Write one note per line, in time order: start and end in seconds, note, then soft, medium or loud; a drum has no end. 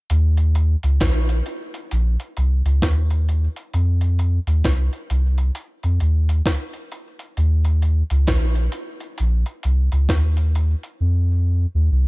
0.10 0.76 D#2 loud
0.10 closed hi-hat medium
0.37 closed hi-hat medium
0.55 closed hi-hat medium
0.83 0.99 C#2 medium
0.83 closed hi-hat medium
1.00 1.42 A#1 medium
1.00 kick loud
1.00 snare loud
1.00 closed hi-hat medium
1.29 closed hi-hat medium
1.46 closed hi-hat medium
1.74 closed hi-hat medium
1.91 2.17 A#1 medium
1.91 closed hi-hat medium
2.20 closed hi-hat medium
2.37 2.62 C2 medium
2.37 closed hi-hat medium
2.65 2.81 C#2 medium
2.65 closed hi-hat medium
2.82 3.48 D#2 medium
2.82 kick loud
2.82 snare loud
2.82 closed hi-hat medium
3.10 closed hi-hat soft
3.29 closed hi-hat medium
3.56 closed hi-hat medium
3.74 4.39 F2 loud
3.74 closed hi-hat medium
4.01 closed hi-hat medium
4.19 closed hi-hat medium
4.47 4.63 D#2 medium
4.47 closed hi-hat medium
4.64 4.90 C2 loud
4.64 kick loud
4.64 snare loud
4.64 closed hi-hat medium
4.93 closed hi-hat medium
5.10 5.51 C2 medium
5.10 closed hi-hat medium
5.38 closed hi-hat medium
5.55 closed hi-hat medium
5.83 5.99 F2 medium
5.83 closed hi-hat medium
6.00 6.42 D#2 medium
6.00 closed hi-hat medium
6.29 closed hi-hat medium
6.46 kick loud
6.46 snare loud
6.46 closed hi-hat medium
6.74 closed hi-hat medium
6.92 closed hi-hat medium
7.19 closed hi-hat medium
7.37 8.03 D#2 loud
7.37 closed hi-hat medium
7.65 closed hi-hat medium
7.82 closed hi-hat medium
8.10 8.26 C#2 loud
8.10 closed hi-hat medium
8.27 8.69 A#1 loud
8.27 kick loud
8.27 snare loud
8.27 closed hi-hat medium
8.55 closed hi-hat medium
8.72 closed hi-hat medium
9.00 closed hi-hat medium
9.18 9.44 A#1 loud
9.18 closed hi-hat medium
9.46 closed hi-hat medium
9.63 9.89 C2 medium
9.63 closed hi-hat medium
9.92 10.08 C#2 medium
9.92 closed hi-hat medium
10.09 10.75 D#2 loud
10.09 kick loud
10.09 snare loud
10.09 closed hi-hat medium
10.37 closed hi-hat soft
10.55 closed hi-hat medium
10.83 closed hi-hat medium
11.01 11.66 F2 loud
11.75 11.90 D#2 loud
11.91 12.08 C2 medium